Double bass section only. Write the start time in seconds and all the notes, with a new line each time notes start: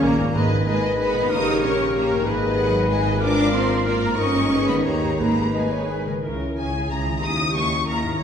0.03 A#1
0.35 G#1
1.31 A#1
2.26 G#1
4.18 G1
4.51 G#1
4.85 D#2
5.19 G#1
6.24 C#2
6.57 C#2
6.90 C#2
7.23 D#2
7.55 D#2
7.87 D#2
8.20 G#1